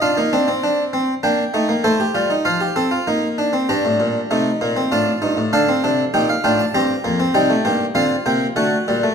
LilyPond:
<<
  \new Staff \with { instrumentName = "Harpsichord" } { \time 3/4 \key ees \major \tempo 4 = 98 << { f''2 g''4 | c''4 f''2 | bes''2 a''4 | f''4 g''16 f''16 g''16 a''16 bes''4 |
\key c \dorian g''4 f''8 g''8 fis''4 | } \\ { f'16 ees'16 d'16 c'4~ c'16 d'8 ees'8 | a'16 g'16 f'16 ees'16 f'16 g'16 a'16 f'16 ees'8 d'16 c'16 | d'4 ees'4 f'4 | a'4 g'8 f'8 g'4 |
ees'8 g'8 f'4 fis'4 | } >> }
  \new Staff \with { instrumentName = "Harpsichord" } { \time 3/4 \key ees \major << { d'16 bes16 c'8 d'8 c'8 bes8 a16 bes16 | a8 g8 f8 c'8 bes4 | g4 a8 bes16 c'16 d'8 ees'8 | d'16 c'16 d'8 ees'8 d'8 c'8 bes16 c'16 |
\key c \dorian g16 a16 bes8 c'8 bes8 a8 g16 a16 | } \\ { r2. | r2. | g,16 a,16 bes,8 c8 bes,8 a,8 g,16 a,16 | d8 c8 bes,8 a,8 g,8 f,8 |
c8 g,8 d8 c8 d8 bes,8 | } >> }
>>